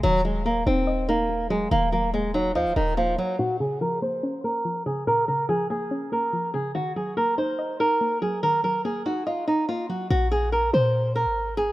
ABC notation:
X:1
M:4/4
L:1/16
Q:1/4=143
K:Bbm
V:1 name="Nylon-string guitar"
G,2 A,2 B,2 C4 B,4 A,2 | B,2 B,2 A,2 G,2 F,2 E,2 F,2 G,2 | G2 A2 B2 c4 B4 A2 | B2 B2 A2 A4 B4 A2 |
G2 A2 B2 c4 B4 A2 | B2 B2 A2 G2 F2 E2 F2 G2 | G2 A2 B2 c4 B4 A2 |]
V:2 name="Synth pluck"
E,2 G,2 B,2 E2 e2 E2 B,2 G,2 | E,2 G,2 B,2 E2 e2 E2 B,2 G,2 | B,,2 D,2 F,2 B,2 D2 B,2 F,2 D,2 | B,,2 D,2 F,2 B,2 D2 B,2 F,2 D,2 |
E,2 G,2 B,2 E2 e2 E2 B,2 G,2 | E,2 G,2 B,2 E2 e2 E2 B,2 G,2 | z16 |]
V:3 name="808-style bass" clef=bass
E,,,6 E,,,8- E,,,2 | E,,,8 E,, E,,, E,,,4 z2 | z16 | z16 |
z16 | z16 | B,,,6 B,,4- B,, A,,,4- A,,, |]